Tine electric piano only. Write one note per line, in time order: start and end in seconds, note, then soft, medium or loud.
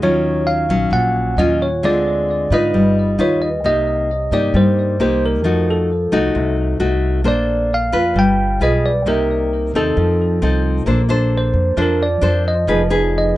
0.03 0.49 C#5 medium
0.47 0.89 F5 medium
0.93 1.39 F#5 medium
1.38 1.61 D#5 medium
1.62 1.84 C#5 medium
1.85 2.54 D5 loud
2.54 3.22 D#5 medium
3.21 3.41 C#5 medium
3.42 3.65 D#5 medium
3.66 4.35 D#5 medium
4.34 4.56 D5 medium
4.57 5.00 C5 medium
5.01 5.24 C5 medium
5.26 5.70 A#4 medium
5.71 6.55 A4 medium
7.28 7.73 D5 medium
7.74 8.19 F5 medium
8.19 8.59 G5 medium
8.63 8.85 D#5 medium
8.86 9.06 D5 medium
9.08 9.71 A#4 medium
9.76 10.62 A4 medium
11.38 11.77 C5 medium
11.82 12.02 A#4 medium
12.03 12.43 D5 medium
12.48 12.88 D#5 medium
13.18 13.37 D#5 medium